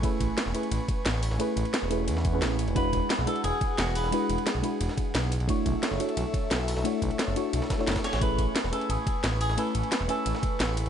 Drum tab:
RD |x---x---x---x-x-x---x---x-------|x---x-x-x---x---x---x---x---x-x-|x---x---x---x-x-x---x---x-------|x---x-x-x---x---x---x---x---x-x-|
HH |x---x---x---o---x---x---x---o---|x---x---x---o---x---x---x---o---|x---x---x---o---x---x---x---o---|x---x---x---o---x---x---x---o---|
SD |--------o-o-------------o-----o-|--------o---------o-----o-------|--------o-o-------------o-----o-|--------o---------o-----o-------|
BD |o---o---------------o-----------|--------------------o-----------|o---o---------------o-----------|--------------------o-----------|

RD |x---x---x---x-x-x---x---x-------|x---x-x-x---x---x---x---xxx-x-x-|x---x---x---x-x-x---x---x-------|x---x-x-x---x---x---x---x---x-x-|
HH |x---x---x---o---x---x---x---o---|x---x---x---o---x---x---x---o---|x---x---x---o---x---x---x---o---|x---x---x---o---x---x---x---o---|
SD |--------o-o-------------o-----o-|--------o---------o-o-o-ooo-o-o-|--------o-o-------------o-----o-|--------o---------o-----o-------|
BD |o---o---------------o-----------|----o---------------o-----o-----|o---o---------------o-----------|--------------------o-----------|